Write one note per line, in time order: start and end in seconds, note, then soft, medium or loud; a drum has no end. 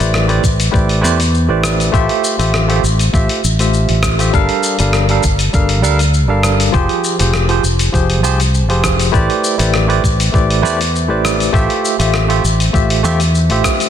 0.00 0.40 A1 loud
0.00 0.25 A3 medium
0.00 0.25 E4 medium
0.00 0.25 G4 medium
0.00 0.25 B4 medium
0.00 0.26 C5 medium
0.00 0.26 D5 medium
0.00 open hi-hat medium
0.00 shaker soft
0.14 cross-stick medium
0.14 shaker soft
0.28 0.42 A3 medium
0.28 0.42 E4 medium
0.28 0.42 G4 medium
0.28 0.43 B4 medium
0.28 0.43 C5 medium
0.28 0.43 D5 loud
0.28 open hi-hat soft
0.43 0.68 A1 medium
0.43 kick loud
0.43 shaker medium
0.60 open hi-hat medium
0.60 shaker soft
0.71 1.04 A1 medium
0.71 0.99 A3 medium
0.71 0.99 E4 medium
0.71 0.99 G4 medium
0.71 1.00 B4 medium
0.71 1.00 C5 medium
0.71 1.00 D5 loud
0.71 kick loud
0.71 shaker soft
0.89 open hi-hat soft
1.01 1.49 E2 medium
1.01 1.17 A3 medium
1.01 1.17 E4 medium
1.01 1.18 G4 medium
1.01 1.18 B4 medium
1.01 1.18 C5 medium
1.01 1.19 D5 loud
1.01 shaker medium
1.20 open hi-hat medium
1.20 shaker soft
1.34 shaker soft
1.48 1.89 A1 medium
1.48 1.90 A3 medium
1.48 1.90 E4 medium
1.48 1.90 G4 medium
1.48 1.90 B4 medium
1.48 1.90 C5 medium
1.48 1.91 D5 medium
1.64 cross-stick medium
1.64 shaker medium
1.80 open hi-hat medium
1.80 shaker soft
1.92 2.07 A1 loud
1.92 2.35 A3 loud
1.92 2.35 F4 medium
1.92 2.35 G4 medium
1.92 2.36 C5 medium
1.92 2.36 E5 loud
1.92 kick loud
1.92 shaker soft
2.09 open hi-hat soft
2.24 shaker medium
2.38 2.79 A1 medium
2.38 2.65 A3 medium
2.38 2.65 F4 medium
2.38 2.66 G4 medium
2.38 2.66 C5 medium
2.38 2.66 E5 medium
2.38 open hi-hat soft
2.38 shaker soft
2.54 cross-stick medium
2.54 shaker soft
2.68 2.82 A3 medium
2.68 2.82 F4 medium
2.68 2.83 G4 medium
2.68 2.83 C5 medium
2.68 2.83 E5 medium
2.68 open hi-hat soft
2.83 3.08 A1 medium
2.83 shaker medium
2.99 open hi-hat medium
2.99 shaker soft
3.13 3.27 A1 medium
3.13 3.40 A3 medium
3.13 3.40 F4 medium
3.13 3.40 G4 medium
3.13 3.41 C5 medium
3.13 3.41 E5 loud
3.13 kick loud
3.13 shaker soft
3.29 open hi-hat soft
3.44 3.85 A1 medium
3.44 shaker medium
3.59 4.16 A3 medium
3.59 4.16 F4 medium
3.59 4.16 G4 medium
3.59 4.16 C5 medium
3.59 4.16 E5 medium
3.59 open hi-hat medium
3.59 shaker soft
3.74 shaker soft
3.89 4.29 A1 medium
3.89 open hi-hat soft
4.03 kick medium
4.03 cross-stick medium
4.03 shaker medium
4.18 4.31 A3 medium
4.18 4.31 F4 medium
4.18 4.31 G4 medium
4.18 4.32 C5 medium
4.18 4.32 E5 medium
4.18 open hi-hat medium
4.18 shaker soft
4.33 4.46 G1 medium
4.33 4.75 G3 medium
4.33 4.76 D4 medium
4.33 4.76 A4 medium
4.33 4.76 A#4 medium
4.33 4.76 F5 loud
4.33 kick loud
4.33 shaker soft
4.49 open hi-hat soft
4.63 shaker medium
4.79 5.19 G1 medium
4.79 5.06 G3 medium
4.79 5.06 D4 medium
4.79 5.06 A4 medium
4.79 5.06 A#4 medium
4.79 5.07 F5 medium
4.79 open hi-hat medium
4.79 shaker soft
4.93 cross-stick medium
4.93 shaker soft
5.09 5.23 G3 medium
5.09 5.23 D4 medium
5.09 5.23 A4 medium
5.09 5.24 A#4 medium
5.09 5.24 F5 medium
5.09 open hi-hat soft
5.23 5.48 G1 loud
5.23 kick loud
5.23 shaker medium
5.39 open hi-hat medium
5.39 shaker soft
5.53 5.84 G1 medium
5.53 5.80 G3 medium
5.53 5.80 D4 medium
5.53 5.80 A4 medium
5.53 5.81 A#4 medium
5.53 5.81 F5 loud
5.53 kick loud
5.53 shaker soft
5.69 open hi-hat soft
5.82 6.30 D2 medium
5.82 5.98 G3 loud
5.82 5.98 D4 medium
5.82 5.99 A4 medium
5.82 5.99 A#4 medium
5.82 5.99 F5 loud
5.82 shaker medium
5.99 open hi-hat medium
5.99 shaker soft
6.14 shaker soft
6.28 6.70 G1 medium
6.28 6.70 G3 medium
6.28 6.70 D4 medium
6.28 6.70 A4 medium
6.28 6.70 A#4 medium
6.28 6.71 F5 medium
6.43 cross-stick medium
6.43 shaker medium
6.60 open hi-hat medium
6.60 shaker soft
6.72 6.87 F1 loud
6.72 7.15 F3 loud
6.72 7.15 F4 medium
6.72 7.16 G4 medium
6.72 7.16 G#4 medium
6.72 7.16 C5 loud
6.72 kick loud
6.72 shaker soft
6.89 open hi-hat soft
7.04 shaker medium
7.19 7.60 F1 medium
7.19 7.45 F3 medium
7.19 7.46 F4 medium
7.19 7.46 G4 medium
7.19 7.46 G#4 medium
7.19 7.47 C5 medium
7.19 open hi-hat medium
7.19 shaker soft
7.34 cross-stick medium
7.34 shaker soft
7.48 7.62 F3 medium
7.48 7.62 F4 medium
7.48 7.63 G4 medium
7.48 7.63 G#4 medium
7.48 7.63 C5 medium
7.48 open hi-hat soft
7.63 7.88 F1 medium
7.63 shaker medium
7.79 open hi-hat medium
7.79 shaker soft
7.92 8.23 F1 medium
7.92 8.19 F3 medium
7.92 8.20 F4 medium
7.92 8.20 G4 medium
7.92 8.20 G#4 medium
7.92 8.21 C5 medium
7.92 kick loud
7.92 shaker soft
8.10 open hi-hat soft
8.23 8.70 C2 medium
8.23 8.38 F3 loud
8.23 8.39 F4 medium
8.23 8.39 G4 medium
8.23 8.39 G#4 medium
8.23 8.39 C5 loud
8.23 shaker medium
8.40 open hi-hat medium
8.40 shaker soft
8.54 shaker soft
8.68 9.09 F1 medium
8.68 9.10 F3 medium
8.68 9.10 F4 medium
8.68 9.10 G4 medium
8.68 9.10 G#4 medium
8.68 9.11 C5 medium
8.68 open hi-hat soft
8.84 kick medium
8.84 cross-stick medium
8.84 shaker medium
8.99 open hi-hat medium
8.99 shaker soft
9.12 9.27 A1 loud
9.12 9.55 A3 loud
9.12 9.55 E4 medium
9.12 9.55 G4 medium
9.12 9.55 B4 medium
9.12 9.56 C5 medium
9.12 9.56 D5 loud
9.12 kick loud
9.12 shaker soft
9.30 open hi-hat soft
9.44 shaker medium
9.58 9.99 A1 medium
9.58 9.85 A3 medium
9.58 9.85 E4 medium
9.58 9.85 G4 medium
9.58 9.86 B4 medium
9.58 9.86 C5 medium
9.58 9.86 D5 medium
9.58 open hi-hat medium
9.58 shaker soft
9.74 cross-stick medium
9.74 shaker soft
9.88 10.02 A3 medium
9.88 10.02 E4 medium
9.88 10.03 G4 medium
9.88 10.03 B4 medium
9.88 10.03 C5 medium
9.88 10.03 D5 loud
9.88 open hi-hat soft
10.04 10.28 A1 loud
10.04 kick loud
10.04 shaker medium
10.20 open hi-hat medium
10.20 shaker soft
10.32 10.63 A1 medium
10.32 10.60 A3 medium
10.32 10.60 E4 medium
10.32 10.60 G4 medium
10.32 10.60 B4 medium
10.32 10.61 C5 medium
10.32 10.61 D5 loud
10.32 kick loud
10.32 shaker soft
10.50 open hi-hat soft
10.62 11.10 E2 medium
10.62 10.78 A3 loud
10.62 10.78 E4 medium
10.62 10.78 G4 medium
10.62 10.78 B4 medium
10.62 10.79 C5 medium
10.62 10.79 D5 loud
10.62 shaker medium
10.81 open hi-hat medium
10.81 shaker soft
10.96 shaker soft
11.08 11.50 A1 loud
11.08 11.50 A3 medium
11.08 11.50 E4 medium
11.08 11.50 G4 medium
11.08 11.50 B4 medium
11.08 11.50 C5 medium
11.08 11.51 D5 loud
11.25 cross-stick medium
11.25 shaker medium
11.40 open hi-hat medium
11.40 shaker soft
11.53 11.67 A1 medium
11.53 11.95 A3 loud
11.53 11.95 F4 loud
11.53 11.96 G4 medium
11.53 11.96 C5 medium
11.53 11.96 E5 loud
11.53 kick loud
11.53 shaker soft
11.70 open hi-hat soft
11.85 shaker medium
11.99 12.39 A1 medium
11.99 12.25 A3 medium
11.99 12.26 F4 medium
11.99 12.26 G4 medium
11.99 12.26 C5 medium
11.99 12.26 E5 medium
11.99 open hi-hat medium
11.99 shaker soft
12.14 cross-stick medium
12.14 shaker soft
12.28 12.42 A3 medium
12.28 12.43 F4 medium
12.28 12.43 G4 medium
12.28 12.43 C5 medium
12.28 12.43 E5 medium
12.28 open hi-hat soft
12.44 12.69 A1 medium
12.44 shaker medium
12.60 open hi-hat medium
12.60 shaker soft
12.73 13.04 A1 medium
12.73 13.00 A3 medium
12.73 13.00 F4 medium
12.73 13.00 G4 medium
12.73 13.01 C5 medium
12.73 13.01 E5 loud
12.73 kick loud
12.73 shaker soft
12.90 open hi-hat soft
13.03 13.50 E2 medium
13.03 13.18 A3 loud
13.03 13.19 F4 medium
13.03 13.19 G4 loud
13.03 13.19 C5 medium
13.03 13.19 E5 loud
13.03 shaker medium
13.20 open hi-hat medium
13.20 shaker soft
13.35 shaker soft
13.50 13.61 A1 medium
13.50 13.89 A3 medium
13.50 13.89 F4 medium
13.50 13.89 G4 medium
13.50 13.89 C5 medium
13.50 13.89 E5 medium
13.50 open hi-hat soft
13.64 kick medium
13.64 cross-stick medium
13.64 shaker medium
13.80 open hi-hat medium
13.80 shaker soft